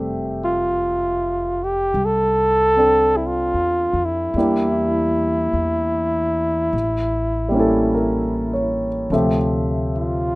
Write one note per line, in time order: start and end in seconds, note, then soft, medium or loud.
0.00 1.92 F1 medium
0.00 4.35 G3 soft
0.00 4.36 A3 soft
0.00 2.75 C4 soft
0.00 4.37 G4 soft
0.00 4.37 E5 soft
0.44 1.65 F4 medium
1.63 2.07 G4 medium
1.94 3.50 C2 medium
2.05 3.18 A4 medium
2.76 4.35 C4 soft
2.76 4.36 D4 soft
2.76 4.37 A4 soft
3.16 3.28 E4 soft
3.27 4.07 F4 medium
3.54 3.92 E2 soft
3.93 4.31 F2 medium
4.05 8.75 E4 medium
4.34 5.50 E2 medium
4.34 6.74 G3 soft
4.34 6.74 A#3 soft
4.38 6.75 D4 soft
4.38 6.75 E4 soft
4.38 6.75 G4 soft
5.53 6.69 E2 medium
6.73 9.06 A1 medium
7.49 9.08 G3 soft
7.49 9.10 A#3 soft
7.54 9.11 C#4 soft
7.54 9.12 E4 soft
7.60 9.14 A4 soft
7.94 8.88 A#4 soft
8.53 9.37 C#5 soft
9.10 10.35 D2 medium
9.10 10.35 C3 soft
9.10 10.35 F3 soft
9.10 10.35 A3 soft
9.10 10.35 G4 soft
9.10 10.35 E5 soft
9.97 10.35 F4 medium